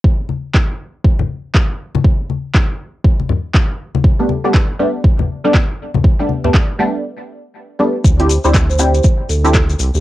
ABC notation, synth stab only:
X:1
M:4/4
L:1/16
Q:"Swing 16ths" 1/4=120
K:Aphr
V:1 name="Synth stab"
z16 | z16 | z [G,A,=B,D] z [G,A,B,D] z2 [G,A,B,D]2 z3 [G,A,B,D] z4 | z [G,A,=B,D]2 [G,A,B,D]3 [G,A,B,D]8 [G,A,B,D] z |
z [CDEG] z [CDEG] z2 [CDEG]2 z3 [CDEG] z4 |]